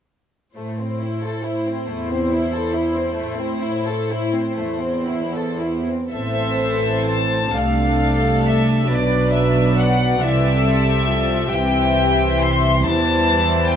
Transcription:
0.55 cello section A2, violin section A3 C5, viola section E4
0.79 violin section C4
1.01 violin section E4
1.24 violin section A4
1.43 violin section E4
1.68 violin section C4
1.88 cello section E2, violin section A3
2.10 violin section C4
2.31 violin section E4
2.54 violin section A4
2.73 violin section E4
2.95 violin section C4
3.15 violin section A3
3.21 cello section A2
3.38 violin section C4
3.61 violin section E4
3.87 violin section A4
4.10 violin section E4
4.33 violin section C4
4.58 cello section E2, violin section A3
4.81 violin section C4
5.06 violin section E4
5.35 violin section A4
5.61 violin section E4
5.89 violin section C4
6.13 double bass section A1, cello section A2, viola section E3 C4, violin section A4 C5 E5
7.07 violin section A5
7.54 double bass section C2, cello section C3, viola section A3 D4, violin section A4 F5
8.47 violin section E5
8.90 double bass section B1, cello section B2, viola section F#3, violin section B4 D5
9.33 violin section E5
9.78 violin section F#5
10.22 double bass section C2, cello section C3, viola section E3 C4, violin section A4 E5
10.66 viola section G3
11.09 viola section F3
11.51 double bass section C2, cello section C3, viola section E3 C4, violin section G4 E5 G5
12.42 violin section C6
12.85 double bass section E2, cello section E3, viola section G3 B3, violin section E4 C5 A5
13.68 violin section G5

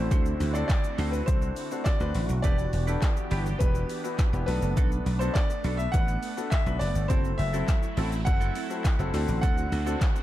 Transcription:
Already playing: supersaw synth D3 A3 C4 E4 F#4, grand piano C4 D4 F#4 A4 C5
0.11 slap bass D2, clean electric guitar D4 F#4 C5, kick, closed hi-hat, shaker
0.26 muted clean electric guitar stroke, shaker
0.40 slap bass D2, muted clean electric guitar stroke, open hi-hat, shaker
0.54 grand piano C4 D4 F#4 A4 D5, clean electric guitar D4 F#4 C5, shaker
0.68 grand piano D5, kick, snare, clap, closed hi-hat, shaker
0.84 muted clean electric guitar stroke, shaker
0.98 slap bass D2, grand piano C4 D4 F#4 A4, clean electric guitar D4 F#4 C5, open hi-hat, shaker
1.11 grand piano B4, muted clean electric guitar stroke, shaker
1.26 slap bass C2, grand piano C4 D4 F#4 A4 C5, muted clean electric guitar stroke, kick, closed hi-hat, shaker
1.42 muted clean electric guitar stroke, shaker
1.56 open hi-hat, shaker
1.71 grand piano C4 D4 F#4 A4, muted clean electric guitar stroke, shaker
1.84 grand piano D5, muted clean electric guitar stroke, kick, snare, clap, closed hi-hat, shaker
2.00 slap bass D2, grand piano C4 D4 F#4 B4, muted clean electric guitar stroke, shaker
2.15 slap bass A1, open hi-hat, shaker
2.29 slap bass B1, muted clean electric guitar stroke, shaker
2.42 slap bass E1, supersaw synth E3 B3 D4 G4, grand piano B3 D4 E4 G4 D5, clean electric guitar D4 G4 B4, kick, closed hi-hat, shaker
2.58 muted clean electric guitar stroke, shaker
2.73 slap bass E1, muted clean electric guitar stroke, open hi-hat, shaker
2.87 grand piano B3 D4 E4 A4, clean electric guitar D4 G4 B4, shaker
3.02 kick, snare, clap, closed hi-hat, shaker
3.16 muted clean electric guitar stroke, shaker
3.31 slap bass G1, grand piano B3 D4 E4 G4, clean electric guitar D4 G4 B4, open hi-hat, shaker
3.46 muted clean electric guitar stroke, shaker
3.59 slap bass E1, grand piano B3 D4 E4 G4 B4, muted clean electric guitar stroke, kick, closed hi-hat, shaker
3.75 muted clean electric guitar stroke, shaker
3.89 open hi-hat, shaker
4.04 grand piano B3 D4 E4 F#4, muted clean electric guitar stroke, shaker
4.19 muted clean electric guitar stroke, kick, snare, clap, closed hi-hat, shaker
4.33 slap bass E1, grand piano B3 D4 E4 G4, muted clean electric guitar stroke, shaker
4.46 slap bass B1, supersaw synth A3, grand piano B3 D4 F#4 A4 B4, open hi-hat, shaker
4.62 slap bass F#1, muted clean electric guitar stroke, shaker
4.77 slap bass B1, clean electric guitar D4 F#4 A4, kick, closed hi-hat, shaker
4.92 muted clean electric guitar stroke, shaker
5.06 slap bass B1, muted clean electric guitar stroke, open hi-hat, shaker
5.19 grand piano B3 D4 F#4 A4 C5, clean electric guitar D4 F#4 A4, shaker
5.34 grand piano D5, kick, snare, clap, closed hi-hat, shaker
5.50 muted clean electric guitar stroke, shaker
5.64 slap bass B1, grand piano B3 D4 F#4 A4, clean electric guitar D4 F#4 A4, open hi-hat, shaker
5.77 grand piano E5, muted clean electric guitar stroke, shaker
5.92 slap bass A1, grand piano B3 D4 F#4 B4 F#5, muted clean electric guitar stroke, kick, closed hi-hat, shaker
6.08 muted clean electric guitar stroke, shaker
6.23 open hi-hat, shaker
6.37 grand piano B3 D4 F#4 A4, muted clean electric guitar stroke, shaker
6.50 grand piano E5, muted clean electric guitar stroke, kick, snare, clap, closed hi-hat, shaker
6.66 slap bass B1, grand piano B3 D4 F#4 B4, muted clean electric guitar stroke, shaker
6.79 slap bass F#1, grand piano D5, open hi-hat, shaker
6.95 slap bass G1, muted clean electric guitar stroke, shaker
7.08 supersaw synth F#3 E4, clean electric guitar C4 E4 A4, grand piano C4 E4 F#4 A4 C5, kick, closed hi-hat, shaker
7.24 muted clean electric guitar stroke, shaker
7.38 slap bass F#1, grand piano E5, muted clean electric guitar stroke, open hi-hat, shaker
7.53 grand piano C4 E4 F#4 A4, clean electric guitar C4 E4 A4, shaker
7.68 kick, snare, clap, closed hi-hat, shaker
7.83 muted clean electric guitar stroke, shaker
7.97 slap bass A1, clean electric guitar C4 E4 A4, grand piano C4 E4 F#4 A4, open hi-hat, shaker
8.12 muted clean electric guitar stroke, shaker
8.25 slap bass F#1, grand piano C4 E4 F#4 A4 F#5, muted clean electric guitar stroke, kick, closed hi-hat, shaker
8.41 clean electric guitar C4 E4 A4, shaker
8.55 clean electric guitar C4 E4 A4, open hi-hat, shaker
8.70 grand piano C4 E4 F#4 A4, muted clean electric guitar stroke, shaker
8.84 muted clean electric guitar stroke, kick, snare, clap, closed hi-hat, shaker
8.99 slap bass F#1, grand piano C4 E4 F#4 A4, muted clean electric guitar stroke, shaker
9.14 slap bass D2, supersaw synth D3 C4 F#4, grand piano C4 D4 F#4 A4, open hi-hat, shaker
9.28 slap bass A1, muted clean electric guitar stroke, shaker
9.41 slap bass D2, clean electric guitar C4 F#4 A4, grand piano F#5, kick, closed hi-hat, shaker
9.57 muted clean electric guitar stroke, shaker
9.72 slap bass D2, muted clean electric guitar stroke, open hi-hat, shaker
9.86 grand piano C4 D4 F#4 A4, clean electric guitar C4 F#4 A4, shaker
10.01 kick, snare, clap, closed hi-hat, shaker
10.16 muted clean electric guitar stroke, shaker

